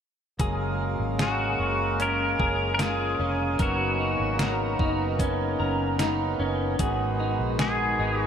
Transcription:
0.40 F#1 C#3 F#3 G#3 A#3 G#4 F5, kick, closed hi-hat
1.00 G#1
1.19 F#4 G#4, snare, closed hi-hat
1.59 F#1
2.00 C#4 A#4, closed hi-hat
2.40 F#1 G#4, kick
2.74 A#4
2.79 F4 G#4, snare, closed hi-hat
3.19 F1 C#4
3.59 F#1 F#3 B3 D#4 F#4 A#4, kick, closed hi-hat
4.00 D#4
4.20 G#1
4.39 A#4, snare, closed hi-hat
4.79 F#1 D#4, kick
5.19 C#4, kick, closed hi-hat
5.60 F#1 A#4
5.99 D#4, snare, closed hi-hat
6.39 F#1 C#4
6.79 G#1 G#2 D#3 G#3 B3 F#4 G#4, kick, closed hi-hat
7.20 D#4
7.39 A#1
7.59 G#4, snare, closed hi-hat
7.99 G#1 D#4
8.21 F#4

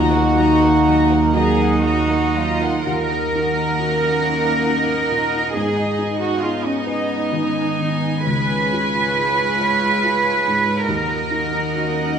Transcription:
Already playing: D#2 D#3 A#3 D#4 F#4 D#5 F#5
0.10 A#3 A#4 F#5
0.35 F#3 A#4 D#5 A#5
0.59 A#3 A#4 F#5
0.84 F#3 D#5 A#5
1.09 A#3 A#4 F#5
1.33 F#3 D#4 G#4 A#4 D#5 A#5
1.57 A#3 A#4 F#5
1.82 F#3 F#4 D#5 A#5
2.09 A#3 A#4 F#5
2.35 F#3 F4 A#4 D#5 A#5
2.62 A#3 A#4 F#5
2.86 D#2 D#3 A#3 D#4 A#4 D#5 F#5
3.11 D#4
3.34 D#4 F#4
3.56 D#4
3.79 C#4 F#4
4.02 D#4
4.22 C#4 A#4
4.44 D#4
4.66 A#3 D#4
4.89 D#4
5.11 A#2 F#4
5.35 D#4
5.54 G#2 B3 G#4 G#5
5.78 D#4
5.98 D#4 G#4
6.20 D#4 F#4
6.42 C#4 F4 G#4
6.64 C#4 D#4
6.86 C#4 D#4 B4
7.08 D#4
7.31 D#3 D#4
7.54 D#4
7.78 D#3 G#4
8.01 D#4
8.25 C#2 C#3 G#3 F4 B4 C#5
8.49 F4
8.72 F4 G#4
8.95 F4
9.16 D#4 G#4
9.38 F4
9.61 D#4 C#5
9.81 F4
10.02 G#3 F4
10.24 F4
10.45 G#2 G#4
10.65 F4
10.88 D#2 D#3 A#3 D#4 A#4 D#5 F#5
11.10 D#4
11.31 D#4 F#4
11.52 D#4
11.74 C#4 F#4
11.96 D#4

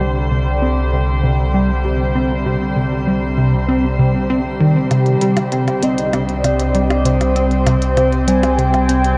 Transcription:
Already playing: C2 C3 D3 G3 C5
0.01 G3
0.32 C3
0.62 C4
0.93 C3
1.24 C3
1.54 G3
1.85 C3
2.15 C4
2.46 C3
2.76 C3
3.07 G3
3.38 C3
3.69 C4
3.99 C3
4.30 C4
4.60 D#3
4.91 C2 C3 G4, closed hi-hat, percussion blips
5.06 closed hi-hat
5.21 G3, closed hi-hat
5.37 closed hi-hat, percussion blips
5.52 C3, closed hi-hat
5.68 closed hi-hat, percussion blips
5.83 C4 D#5, closed hi-hat
5.98 C4, closed hi-hat
6.13 C3 D5, closed hi-hat, percussion blips
6.29 closed hi-hat
6.44 C3, closed hi-hat, percussion blips
6.60 closed hi-hat
6.75 G3, closed hi-hat
6.90 closed hi-hat, percussion blips
7.05 C3 C5, closed hi-hat
7.21 closed hi-hat, percussion blips
7.36 C4 C5, closed hi-hat
7.51 closed hi-hat
7.66 C3, closed hi-hat, percussion blips
7.82 closed hi-hat
7.97 C3, closed hi-hat, percussion blips
8.12 closed hi-hat
8.28 G3 G#5, closed hi-hat
8.43 closed hi-hat, percussion blips
8.58 C3 G5, closed hi-hat
8.74 closed hi-hat, percussion blips
8.89 C4, closed hi-hat
9.04 closed hi-hat

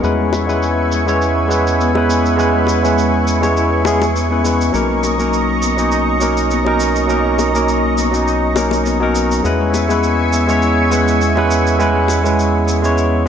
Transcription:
Already playing: B3 D#4
0.01 E2 G#3 B3 C#4 E4 B4 E5 G#5 C#6, cabasa
0.20 G#3
0.33 B4, high bongo, cabasa
0.46 G#3 B3 C#4 E4 B4, cabasa
0.63 cabasa
0.91 B3, cabasa
1.06 G#3 B3 C#4 E4 C#5, cabasa
1.21 E4, cabasa
1.48 G#3 B3 C#4 E4 B4, cabasa
1.67 cabasa
1.79 B3, cabasa
1.94 G#3 B3 C#4 E4 B4, high bongo
2.09 B3, cabasa
2.26 cabasa
2.37 G#3 B3 C#4 E4 B4, cabasa
2.55 G#3
2.67 B4, high bongo, cabasa
2.82 G#3 B3 C#4 E4 B4, cabasa
2.98 cabasa
3.27 B3, cabasa
3.40 G#3 B3 C#4 E4 C#5, high bongo, cabasa
3.56 E4, cabasa
3.84 G#3 B3 C#4 E4 G#4, high bongo, cabasa
4.02 high bongo, cabasa
4.15 B3, cabasa
4.29 G#3 B3 C#4 E4 B4
4.43 G#3 B3 C#4 E4 B4, cabasa
4.61 cabasa
4.72 B1 F#3 A#3 C#4 D#4 A#4 D#5 A#5, cabasa
4.90 A#3
5.03 A#4, high bongo, cabasa
5.18 F#3 A#3 C#4 D#4 A#4, cabasa
5.34 cabasa
5.62 B3, cabasa
5.77 F#3 A#3 C#4 D#4, cabasa
5.92 D#4, cabasa
6.20 F#3 A#3 C#4 D#4 A#4, cabasa
6.37 cabasa
6.50 B3, cabasa
6.65 F#3 C#4 D#4 A#4, high bongo
6.80 B3, cabasa
6.96 cabasa
7.07 F#3 A#3 C#4 D#4 A#4, cabasa
7.25 A#3
7.38 A#4, high bongo, cabasa
7.53 F#3 A#3 C#4 D#4 A#4, cabasa
7.69 cabasa
7.98 B3, cabasa
8.11 F#3 A#3 C#4 D#4, cabasa
8.27 D#4, cabasa
8.55 F#3 A#3 C#4 D#4 A#4, high bongo, cabasa
8.71 high bongo, cabasa
8.85 B3, cabasa
9.00 F#3 C#4 D#4 A#4
9.15 B3, cabasa
9.32 cabasa
9.43 E2 G#3 B3 C#4 E4 B4 E5 G#5 C#6, cabasa
9.60 G#3
9.74 B4, high bongo, cabasa
9.88 G#3 B3 C#4 E4 B4, cabasa
10.04 cabasa
10.32 B3, cabasa
10.47 G#3 B3 C#4 E4 C#5, cabasa
10.62 E4, cabasa
10.90 G#3 B3 C#4 E4 B4, cabasa
11.08 cabasa
11.21 B3, cabasa
11.35 G#3 B3 C#4 E4 B4, high bongo
11.49 B3, cabasa
11.67 cabasa
11.78 G#3 B3 C#4 E4 B4, cabasa
11.95 G#3
12.08 B4, high bongo, cabasa
12.24 G#3 B3 C#4 E4 B4, cabasa
12.39 cabasa
12.67 B3, cabasa
12.82 G#3 B3 C#4 E4 C#5, cabasa
12.97 E4, cabasa

